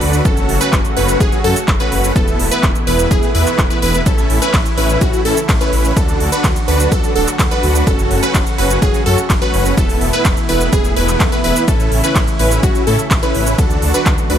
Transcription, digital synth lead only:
0.00 0.22 B4 loud
0.25 0.58 A4 medium
0.61 0.80 B4 loud
0.97 1.18 B4 loud
1.20 1.40 G#4 loud
1.44 1.56 A4 loud
1.80 2.13 B4 loud
2.16 2.49 A4 medium
2.51 2.71 B4 loud
2.87 3.08 B4 loud
3.11 3.30 G#4 loud
3.35 3.68 B4 loud
3.70 3.79 B4 medium
3.82 4.02 B4 loud
4.06 4.39 A4 medium
4.42 4.61 B4 loud
4.77 4.98 B4 loud
5.01 5.21 F#4 loud
5.25 5.37 A4 loud
5.61 5.94 B4 loud
5.97 6.29 A4 medium
6.32 6.52 B4 loud
6.68 6.89 B4 medium
6.92 7.11 A4 loud
7.16 7.28 A4 loud
7.51 7.84 B4 loud
7.87 8.20 A4 medium
8.23 8.42 B4 loud
8.58 8.79 B4 loud
8.82 9.02 G#4 loud
9.06 9.18 A4 loud
9.42 9.75 B4 loud
9.77 10.10 A4 medium
10.13 10.33 B4 loud
10.49 10.70 B4 medium
10.73 10.92 G#4 loud
10.96 11.29 B4 loud
11.32 11.41 B4 medium
11.44 11.64 B4 loud
11.68 12.01 A4 medium
12.04 12.23 B4 loud
12.39 12.60 B4 loud
12.63 12.83 F#4 loud
12.87 12.99 A4 loud
13.23 13.56 B4 loud
13.58 13.91 A4 medium
13.94 14.14 B4 loud
14.30 14.38 B4 medium

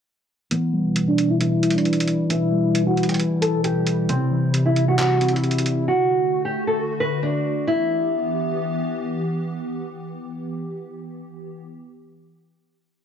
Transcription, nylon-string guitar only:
0.51 1.04 B3 loud
1.08 1.28 D4 medium
1.30 1.40 E4 medium
1.41 1.73 E4 medium
1.75 2.27 D4 medium
2.30 2.83 E4 loud
2.87 3.07 F#4 medium
3.09 3.19 G4 medium
3.42 3.62 A4 medium
3.64 4.07 G4 medium
4.09 4.62 C4 loud
4.66 4.86 E4 medium
4.88 4.97 F#4 medium
4.98 5.31 F#4 medium
5.33 5.85 E4 medium
5.88 6.41 F#4 medium
6.45 6.65 G4 medium
6.67 6.77 A4 medium
7.00 7.21 B4 medium
7.23 7.65 D4 medium
7.67 8.98 E4 medium

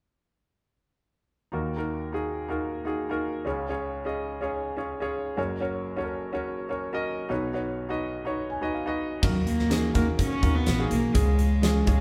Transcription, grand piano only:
1.52 3.41 D#2 medium
1.52 3.41 D#3 medium
1.52 1.75 D#4 medium
1.52 1.76 F4 medium
1.52 1.76 F#4 medium
1.52 1.76 A#4 medium
1.77 2.11 D#4 medium
1.77 2.11 F4 medium
1.77 2.12 F#4 medium
1.77 2.12 A#4 medium
2.12 2.47 D#4 medium
2.12 2.48 F4 medium
2.12 2.48 F#4 medium
2.12 2.48 G#4 medium
2.48 2.83 D#4 medium
2.48 2.84 F4 medium
2.48 2.84 F#4 medium
2.48 2.84 A#4 medium
2.85 3.08 D#4 medium
2.85 3.08 F4 medium
2.85 3.09 F#4 medium
2.85 3.09 G#4 medium
3.09 3.44 D#4 medium
3.09 3.44 F4 medium
3.09 3.44 F#4 medium
3.09 3.45 A#4 medium
3.45 5.34 C#2 medium
3.45 5.34 C#3 soft
3.45 3.67 C#4 medium
3.45 3.68 F4 medium
3.45 3.68 G#4 medium
3.45 3.69 C#5 medium
3.69 4.03 C#4 medium
3.69 4.04 F4 medium
3.69 4.04 G#4 medium
3.69 4.04 C#5 medium
4.05 4.39 C#4 medium
4.05 4.40 F4 medium
4.05 4.40 G#4 medium
4.05 4.40 D#5 medium
4.41 4.75 C#4 medium
4.41 4.76 F4 medium
4.41 4.76 G#4 medium
4.41 4.76 C#5 medium
4.77 4.99 C#4 medium
4.77 4.99 F4 medium
4.77 5.00 G#4 medium
4.77 5.01 C#5 medium
5.00 5.35 C#4 medium
5.00 5.36 F4 medium
5.00 5.36 G#4 medium
5.00 5.36 C#5 medium
5.37 7.26 F#1 medium
5.37 7.26 F#2 medium
5.37 5.59 C#4 medium
5.37 5.60 F#4 medium
5.37 5.60 A#4 medium
5.37 5.61 C#5 medium
5.61 5.95 C#4 medium
5.61 5.96 F#4 medium
5.61 5.96 A#4 medium
5.61 5.96 C#5 medium
5.97 6.31 C#4 medium
5.97 6.32 F#4 medium
5.97 6.04 A4 soft
5.97 6.32 C#5 medium
6.04 6.32 A#4 medium
6.33 6.68 C#4 medium
6.33 6.68 F#4 medium
6.33 6.68 A#4 medium
6.33 6.69 C#5 medium
6.69 6.91 C#4 medium
6.69 6.92 F#4 medium
6.69 6.92 A#4 medium
6.69 6.93 C#5 medium
6.93 7.28 C#4 medium
6.93 7.28 F#4 medium
6.93 7.28 A#4 medium
6.93 7.29 D#5 medium
7.29 9.19 B1 medium
7.29 9.18 B2 medium
7.29 7.52 D#4 medium
7.29 7.52 F#4 medium
7.29 7.53 B4 medium
7.29 7.53 C#5 medium
7.53 7.87 D#4 medium
7.53 7.88 F#4 medium
7.53 7.89 B4 medium
7.53 7.89 C#5 medium
7.89 8.23 D#4 medium
7.89 8.24 F#4 medium
7.89 8.25 B4 medium
7.89 8.25 D#5 medium
8.25 8.60 D#4 medium
8.25 8.60 F#4 medium
8.25 8.61 B4 medium
8.25 8.61 C#5 medium
8.50 8.61 G#5 medium
8.61 8.84 D#4 medium
8.61 8.85 F#4 medium
8.61 8.85 B4 medium
8.61 8.86 D#5 medium
8.61 8.73 F#5 medium
8.74 9.19 F5 medium
8.86 9.20 D#4 medium
8.86 9.21 F#4 medium
8.86 9.21 B4 medium
8.86 9.21 D#5 medium
9.22 9.91 D#3 soft
9.22 9.68 D#4 medium
9.22 9.68 F4 medium
9.22 9.69 F#4 medium
9.22 9.69 A#4 medium
9.70 9.92 D#4 medium
9.70 9.93 F4 medium
9.70 9.93 F#4 medium
9.70 9.94 G#4 medium
9.94 10.40 D#4 medium
9.94 10.40 F4 medium
9.94 10.41 F#4 medium
9.94 10.41 A#4 medium
10.42 10.77 D#4 medium
10.42 10.77 F4 medium
10.42 10.77 F#4 medium
10.42 10.78 A#4 medium
10.78 11.13 D#4 medium
10.78 11.13 F4 medium
10.78 11.14 F#4 medium
10.78 11.14 G#4 medium
11.14 11.83 C#3 medium
11.14 11.60 G#3 medium
11.14 11.61 C#4 medium
11.14 11.61 F4 medium
11.14 11.61 G#4 medium
11.62 11.84 G#3 medium
11.62 11.85 C#4 medium
11.62 11.86 F4 medium
11.62 11.86 G#4 medium
11.86 12.01 G#3 medium
11.86 12.01 C#4 medium
11.86 12.01 F4 medium
11.86 12.01 G#4 medium

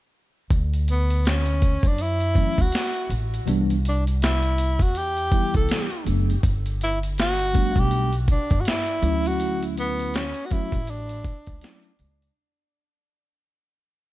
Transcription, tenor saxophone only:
0.91 1.30 B3 medium
1.28 1.88 C#4 medium
1.87 2.04 D4 medium
2.02 2.63 E4 medium
2.61 3.12 F#4 medium
3.89 4.04 D4 medium
4.23 4.84 E4 medium
4.82 4.99 F#4 medium
4.97 5.55 G4 loud
5.57 6.04 A4 medium
6.84 7.00 E4 medium
7.21 7.81 F#4 loud
7.79 8.15 G4 medium
8.31 8.62 D4 medium
8.61 8.69 F#4 medium
8.68 9.29 E4 medium
9.27 9.63 F#4 medium
9.79 10.17 B3 medium
10.16 10.47 C#4 medium
10.46 10.54 F#4 medium
10.53 10.92 E4 medium
10.90 12.00 D4 medium

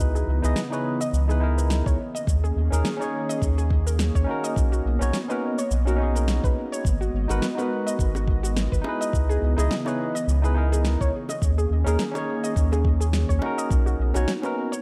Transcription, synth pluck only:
0.15 0.26 G#4 medium
0.43 0.56 B4 medium
0.72 0.84 C#5 medium
1.01 1.12 D#5 loud
1.29 1.41 G#4 medium
1.58 1.70 B4 medium
1.86 1.98 C#5 medium
2.15 2.26 D#5 medium
2.44 2.55 G#4 medium
2.72 2.84 A#4 medium
3.01 3.12 C#5 medium
3.29 3.41 D#5 loud
3.58 3.69 G#4 medium
3.87 3.99 A#4 medium
4.15 4.27 C#5 medium
4.44 4.55 D#5 loud
4.72 4.84 F#4 medium
5.01 5.13 A#4 medium
5.30 5.41 B4 medium
5.58 5.70 C#5 loud
5.87 5.98 F#4 medium
6.15 6.27 A#4 medium
6.44 6.55 B4 medium
6.72 6.84 C#5 medium
7.01 7.12 F#4 medium
7.30 7.41 F#4 loud
7.58 7.69 B4 medium
7.87 7.98 D#5 loud
8.15 8.26 F#4 medium
8.43 8.55 F#4 medium
8.72 8.83 B4 medium
9.01 9.12 D#5 medium
9.29 9.41 G#4 medium
9.58 9.69 G#4 loud
9.86 9.98 C#5 medium
10.15 10.26 D#5 loud
10.44 10.55 G#4 medium
10.72 10.84 G#4 medium
11.01 11.12 C#5 medium
11.29 11.41 D#5 medium
11.58 11.69 G#4 medium
11.86 11.98 G#4 loud
12.15 12.26 C#5 medium
12.44 12.55 D#5 loud
12.72 12.84 G#4 medium
13.00 13.12 G#4 medium
13.29 13.41 C#5 medium
13.58 13.69 D#5 medium
13.86 13.98 F#4 medium
14.15 14.26 F#4 loud
14.43 14.55 B4 medium
14.72 14.82 C#5 loud

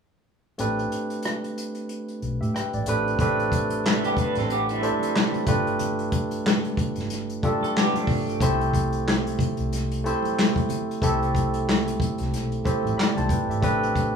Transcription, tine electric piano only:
0.58 1.75 A3 medium
0.58 1.76 C4 medium
0.58 1.76 D4 medium
0.58 1.76 G4 medium
0.58 1.76 B4 medium
2.41 2.54 G4 soft
2.41 2.53 E5 medium
2.55 2.73 B4 soft
2.55 2.72 G5 medium
2.74 3.04 D5 medium
2.87 3.16 A3 medium
2.87 3.16 C4 medium
2.87 3.16 D4 medium
2.87 3.17 G4 medium
2.87 3.17 B4 medium
3.19 4.36 A3 medium
3.19 4.37 C4 medium
3.19 4.37 D4 medium
3.19 4.37 G4 medium
3.19 4.37 B4 medium
4.82 5.46 A3 medium
4.82 5.47 C4 medium
4.82 5.46 D4 medium
4.82 5.47 G4 medium
4.82 5.48 C5 medium
5.47 6.64 A3 medium
5.47 6.64 D4 medium
5.47 6.64 F4 medium
5.47 6.65 G4 medium
5.47 6.65 B4 medium
7.43 8.31 A3 medium
7.43 8.31 D4 medium
7.43 8.31 F4 medium
7.43 8.31 G4 medium
7.43 8.32 A4 medium
8.41 9.58 A3 medium
8.41 9.58 C4 medium
8.41 9.58 E4 medium
8.41 9.59 G4 medium
8.41 9.59 C5 loud
10.04 10.92 A3 medium
10.04 10.92 C4 medium
10.04 10.92 E4 medium
10.04 10.93 G4 medium
10.04 10.93 C5 medium
11.02 12.19 A3 medium
11.02 12.19 C4 medium
11.02 12.19 E4 medium
11.02 12.20 G4 medium
11.02 12.20 A4 medium
12.65 13.52 A3 medium
12.65 13.53 C4 medium
12.65 13.53 E4 medium
12.65 12.98 G4 medium
12.65 12.98 C5 medium
12.98 13.16 D5 soft
12.98 13.15 B5 medium
13.17 13.30 C5 medium
13.17 13.29 A5 medium
13.31 13.49 B4 medium
13.31 13.49 G5 medium
13.50 13.62 G4 soft
13.50 13.80 E5 medium
13.62 14.16 A3 medium
13.62 14.16 C4 medium
13.62 14.16 D4 medium
13.62 14.16 G4 medium
13.62 14.16 B4 medium

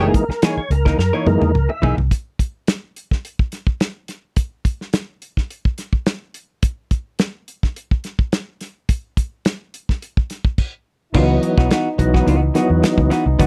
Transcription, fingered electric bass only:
0.29 muted fingered electric bass stroke medium
0.57 muted fingered electric bass stroke soft
0.70 0.93 C#2 medium
0.98 1.10 F#2 loud
1.26 1.38 F#2 loud
1.41 1.52 E2 medium
1.54 1.66 C#2 medium
1.82 1.94 B1 loud
1.97 2.08 C2 medium
11.14 11.37 C#2 loud
11.58 11.68 B1 loud
11.99 12.21 B1 loud
12.27 12.49 C#2 loud
12.70 12.81 E2 medium
12.83 muted fingered electric bass stroke soft
12.97 13.08 C#2 loud
13.26 13.37 C2 loud
13.39 13.47 C#2 loud

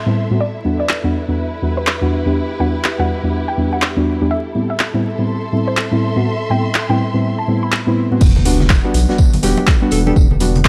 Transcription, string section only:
0.00 1.99 A4 medium
0.00 1.72 E5 medium
0.00 0.41 C6 medium
0.41 5.89 E4 medium
0.63 4.31 B4 medium
1.63 5.89 G4 medium
4.31 8.21 A4 medium
5.04 8.21 E5 medium
5.13 8.21 C6 medium

